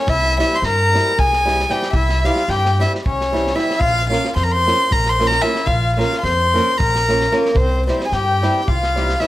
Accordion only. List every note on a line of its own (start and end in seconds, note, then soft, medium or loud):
0.09 0.39 E4 medium
0.41 0.57 E4 medium
0.56 0.63 C5 medium
0.66 1.20 A#4 loud
1.19 1.71 G#4 medium
1.73 1.95 G4 medium
1.94 2.23 E4 loud
2.28 2.51 F4 medium
2.51 2.82 G4 loud
2.82 2.92 E4 medium
3.06 3.54 C#4 medium
3.57 3.80 E4 medium
3.80 4.08 F4 loud
4.10 4.34 F4 medium
4.35 4.44 C5 medium
4.45 4.53 A#4 medium
4.54 4.93 C5 medium
4.93 5.11 A#4 medium
5.10 5.28 C5 medium
5.27 5.44 A#4 medium
5.43 5.67 E4 medium
5.65 5.98 F4 loud
5.99 6.22 F4 medium
6.24 6.76 C5 loud
6.82 7.33 A#4 medium
7.34 7.57 A#3 medium
7.58 7.87 C4 loud
7.89 8.05 C4 medium
8.05 8.12 G#4 medium
8.14 8.61 G4 loud
8.63 8.69 G4 medium
8.68 9.21 F4 medium
9.20 9.27 E4 medium